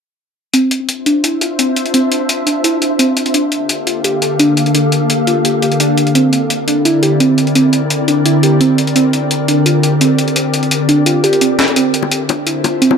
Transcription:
0.53 C4 D4 F4 C5 E5, closed hi-hat
0.71 closed hi-hat
0.89 closed hi-hat
1.06 D4, closed hi-hat
1.24 E4, closed hi-hat
1.41 F4, closed hi-hat
1.59 C4, closed hi-hat
1.76 closed hi-hat
1.86 closed hi-hat
1.94 C4, closed hi-hat
2.12 closed hi-hat
2.29 closed hi-hat
2.47 D4, closed hi-hat
2.64 E4, closed hi-hat
2.82 F4, closed hi-hat
2.99 C4, closed hi-hat
3.17 D3 A#3 G4 A4 F5, closed hi-hat
3.26 closed hi-hat
3.34 D4, closed hi-hat
3.52 closed hi-hat
3.69 closed hi-hat
3.87 F4, closed hi-hat
4.04 G4, closed hi-hat
4.22 A4, closed hi-hat
4.39 D4, closed hi-hat
4.57 closed hi-hat
4.66 closed hi-hat
4.75 D4, closed hi-hat
4.92 closed hi-hat
5.10 closed hi-hat
5.27 F4, closed hi-hat
5.45 G4, closed hi-hat
5.62 G4, closed hi-hat
5.72 closed hi-hat
5.80 D4, closed hi-hat
5.98 C4 E4 A#4 D5, closed hi-hat
6.07 closed hi-hat
6.15 C4, closed hi-hat
6.33 closed hi-hat
6.50 closed hi-hat
6.68 D4, closed hi-hat
6.85 E4, closed hi-hat
7.03 G4, closed hi-hat
7.20 C4, closed hi-hat
7.38 closed hi-hat
7.47 closed hi-hat
7.55 C4, closed hi-hat
7.73 closed hi-hat
7.90 closed hi-hat
8.08 D4, closed hi-hat
8.26 E4, closed hi-hat
8.43 G4, closed hi-hat
8.61 C4, closed hi-hat
8.78 D3 G4, closed hi-hat
8.87 closed hi-hat
8.96 C4, closed hi-hat
9.13 closed hi-hat
9.31 closed hi-hat
9.48 D4, closed hi-hat
9.66 F4, closed hi-hat
9.83 G4, closed hi-hat
10.01 C4, closed hi-hat
10.19 closed hi-hat
10.28 closed hi-hat
10.36 C4, closed hi-hat
10.54 closed hi-hat
10.63 closed hi-hat
10.71 closed hi-hat
10.89 D4, closed hi-hat
11.06 F4, closed hi-hat
11.24 G4, closed hi-hat
11.33 closed hi-hat
11.41 C4, closed hi-hat
11.59 snare, closed hi-hat
11.68 closed hi-hat
11.76 C4 D4 F4 C5 E5, closed hi-hat
11.94 closed hi-hat
12.03 high bongo
12.12 closed hi-hat
12.29 D4, closed hi-hat, high bongo
12.47 E4, closed hi-hat
12.64 F4, closed hi-hat, high bongo
12.82 C4, closed hi-hat
12.91 high bongo

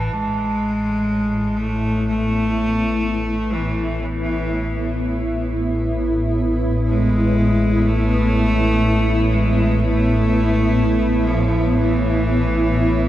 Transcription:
Already playing: A1 A2 E3 A5
0.08 A2
0.12 A1 A2 G#3
0.89 E4
1.48 B3
1.58 A3
2.08 A3
3.53 E3
4.02 E3
6.89 G#3
7.87 A3
9.32 G#3
9.80 A3
11.27 F3
11.76 E3

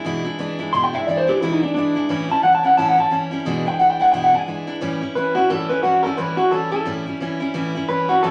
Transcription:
0.05 E2 B2 E3 G#3 D4 E4
0.24 E3 G#3 D4 E4
0.39 E3 G#3 D4 E4
0.59 E3 G#3 D4 E4
0.73 E2 B2 E3 G#3 D4 E4 C6
0.84 G5
0.93 E3 G#3 D4 E4 E5
1.07 E3 G#3 D4 E4 D5
1.17 C5
1.27 E3 G#3 D4 E4 G4
1.41 E2 B2 E3 G#3 D4 E4
1.52 D#4
1.61 E3 G#3 D4 E4
1.74 E3 G#3 D4 E4
1.95 E3 G#3 D4 E4
2.09 A2 E3 G3 C#4 E4
2.29 G3 C#4 E4 A5
2.43 E3 G3 C#4 E4 F#5
2.55 A5
2.63 G3 C#4 E4 F#5
2.77 A2 E3 G3 C#4 E4 A5
2.88 F#5
2.97 G3 C#4 E4 A5
3.10 E3 G3 C#4 E4
3.31 G3 C#4 E4
3.45 E2 B2 E3 G#3 D4 E4
3.65 E3 G#3 D4 E4 G5
3.79 E3 G#3 D4 E4 F#5
3.90 G5
3.99 E3 G#3 D4 E4 F#5
4.12 E2 B2 E3 G#3 D4 E4 G5
4.24 F#5
4.33 E3 G#3 D4 E4 G#5
4.47 E3 G#3 D4 E4
4.67 E3 G#3 D4 E4
4.81 A2 E3 G3 C#4 E4
5.01 G3 C#4 E4
5.15 E3 G3 C#4 E4 B4
5.35 G3 C#4 E4 F#4
5.50 A2 E3 G3 C#4 E4 A4
5.69 G3 C#4 E4 B4
5.83 E3 G3 C#4 E4 F#4
6.03 G3 C#4 E4 A4
6.17 A2 E3 G3 C#4 E4 B4
6.37 G3 C#4 E4 F#4
6.51 E3 G3 C#4 E4 A4
6.71 G3 C#4 E4 A4
6.85 A2 E3 G3 C#4 E4
7.06 G3 C#4 E4
7.20 E3 G3 C#4 E4
7.40 G3 C#4 E4
7.54 A2 E3 G3 C#4 E4
7.75 G3 C#4 E4
7.88 E3 G3 C#4 E4 B4
8.08 G3 C#4 E4 F#4
8.23 A2 E3 G3 C#4 E4 A4

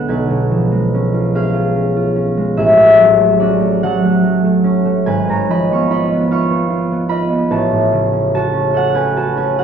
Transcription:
Already playing: B2 D3 G#3 B3 C#4 D4 E4 G#4 A4 D5 F#5
0.08 B1 B4 G#5
0.30 B2
0.51 F3
0.71 G#3
0.94 C#4
1.14 F4
1.35 C#4 G#4 F5
1.53 F4
1.76 C#4
1.97 F4
2.16 C#4
2.37 G#3
2.57 A1 G#4 E5
2.77 A2
3.00 F#3
3.20 A3
3.40 C#4 F#4 D5
3.60 A3
3.83 F#3 A4 F#5
4.05 A3
4.24 F#3
4.45 A3
4.64 C#4
4.85 A3
5.06 G#1 B4 G#5
5.29 G#2 C#5 A#5
5.49 F3 D#5 B5
5.71 B3 F5 C#6
5.90 F4 D#5 B5
6.13 B3
6.31 F4 F5 C#6
6.50 B3
6.70 F4
6.92 B3
7.09 F4 D#5 B5
7.29 B3
7.51 A1 C#5 A5
7.72 A2
7.92 C#3
8.13 C#4
8.35 F#4 C#5 A5
8.53 C#4
8.71 F#4 A4
8.77 F#5
8.94 C#4 B4 G#5
9.17 F#4 C#5 A5
9.36 C#4 B4 G#5
9.59 F#4 A4 F#5

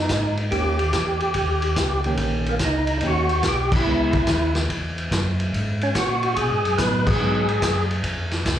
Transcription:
Already playing: D#4
0.09 G#2, kick, snare, hi-hat pedal, ride
0.37 ride
0.51 D#2 D#3 A#3 C#4 G4, kick, ride
0.79 ride
0.93 E2, kick, snare, hi-hat pedal, ride
1.20 ride
1.34 D#2, kick, ride
1.62 ride
1.76 C#2, kick, snare, hi-hat pedal, ride
2.04 D#3 A#3 C#4 G4, ride
2.17 A#1, kick, ride
2.46 A#3, ride
2.59 C#2, kick, snare, hi-hat pedal, ride
2.64 D#4
2.87 ride
2.99 D#2 D#3 A#3 D#4, kick, ride
3.03 C#4 G4
3.07 F#4
3.29 ride
3.43 B1, kick, snare, hi-hat pedal, ride
3.48 G4
3.72 E4, kick, crash
3.86 C#2 G#3 B3 E4
4.13 kick, ride
4.27 D#2, kick, snare, hi-hat pedal, ride
4.55 snare, ride
4.69 E2, kick, ride
4.98 ride
5.11 F#2, kick, snare, hi-hat pedal, ride
5.40 ride
5.54 G#2, kick, ride
5.81 C#4, ride
5.95 A#2 F#4, kick, snare, hi-hat pedal, ride
6.23 ride
6.34 B2 F#4 G#4, kick, ride
6.50 G#2
6.65 F#2, ride
6.78 A2 F#3 B3 D#4 B4, kick, snare, hi-hat pedal, ride
7.06 G#4, kick, crash
7.19 G#2 F#3 B3 D#4
7.49 ride
7.62 F#2, kick, snare, hi-hat pedal, ride
7.91 ride
8.04 F2, kick, ride
8.31 snare, ride
8.45 C#2, kick, snare, hi-hat pedal, ride

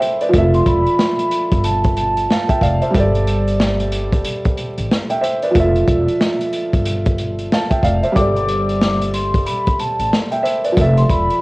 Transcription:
Already playing: G5
0.00 C5 E5, closed hi-hat
0.21 B4 D5, closed hi-hat
0.29 F3 F4
0.34 F1 A4, kick, closed hi-hat
0.38 E5
0.54 C6, closed hi-hat
0.66 E1 B5, kick, closed hi-hat
0.86 closed hi-hat
0.99 snare
1.19 closed hi-hat
1.31 closed hi-hat
1.52 G1, kick, closed hi-hat
1.64 A5, closed hi-hat
1.84 kick, closed hi-hat
1.97 A5, closed hi-hat
2.17 closed hi-hat
2.30 F5 A5, snare
2.49 E5 G5, kick, closed hi-hat
2.61 F1 D5 F5, kick, closed hi-hat
2.82 C5 E5, closed hi-hat
2.91 G3 G4, kick
2.95 G1 A4, closed hi-hat
2.99 D5
3.15 closed hi-hat
3.27 closed hi-hat
3.48 closed hi-hat
3.60 snare
3.80 closed hi-hat
3.92 closed hi-hat
4.13 kick, closed hi-hat
4.25 closed hi-hat
4.45 kick, closed hi-hat
4.57 closed hi-hat
4.78 A1, closed hi-hat
4.92 snare
5.10 E5 G5, closed hi-hat
5.21 C5 E5, closed hi-hat
5.42 B4 D5, closed hi-hat
5.51 F3 F4
5.55 F1 A4, kick, closed hi-hat
5.60 E5
5.76 closed hi-hat
5.88 E1, kick, closed hi-hat
6.08 closed hi-hat
6.21 snare
6.41 closed hi-hat
6.53 closed hi-hat
6.73 G1, kick, closed hi-hat
6.85 closed hi-hat
7.06 kick, closed hi-hat
7.18 closed hi-hat
7.39 closed hi-hat
7.52 F5 A5, snare
7.70 E5 G5, kick, closed hi-hat
7.83 F1 D5 F5, kick, closed hi-hat
8.03 C5 E5, closed hi-hat
8.12 G3 G4 D6
8.16 G1 A4, kick, closed hi-hat
8.21 D5
8.36 closed hi-hat
8.49 closed hi-hat
8.69 closed hi-hat
8.82 snare
9.02 closed hi-hat
9.14 C6, closed hi-hat
9.34 kick, closed hi-hat
9.46 B5, closed hi-hat
9.67 kick, closed hi-hat
9.79 A5, closed hi-hat
9.99 A1, closed hi-hat
10.13 snare
10.32 E5 G5, closed hi-hat
10.43 C5 E5, closed hi-hat
10.64 B4 D5, closed hi-hat
10.72 F3 F4
10.77 F1 A4, kick, closed hi-hat
10.81 E5
10.97 C6, closed hi-hat
11.09 E1 B5, kick, closed hi-hat
11.30 closed hi-hat

